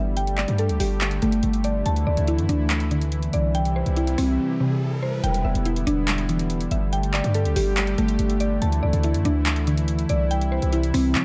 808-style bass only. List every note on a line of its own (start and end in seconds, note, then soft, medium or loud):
0.00 0.46 G1 loud
0.48 0.71 G2 loud
0.69 0.79 D2 loud
0.80 1.21 G1 loud
1.22 1.42 G1 loud
1.43 1.84 G1 loud
1.86 2.06 D2 loud
2.07 2.17 D2 loud
2.17 2.40 D2 loud
2.38 2.48 F#2 loud
2.49 3.30 D2 loud
3.34 3.84 C2 loud
3.86 4.17 C2 loud
4.18 4.39 C2 loud
5.24 5.44 E1 loud
5.45 5.55 E1 loud
5.55 5.86 E1 loud
5.87 6.68 E1 loud
6.71 7.22 G1 loud
7.24 7.47 G2 loud
7.45 7.55 D2 loud
7.56 7.96 G1 loud
7.98 8.19 G1 loud
8.19 8.60 G1 loud
8.62 8.82 D2 loud
8.83 8.93 D2 loud
8.93 9.16 D2 loud
9.14 9.24 F#2 loud
9.25 10.06 D2 loud
10.09 10.60 C2 loud
10.62 10.93 C2 loud
10.94 11.17 C2 loud
11.15 11.25 G3 loud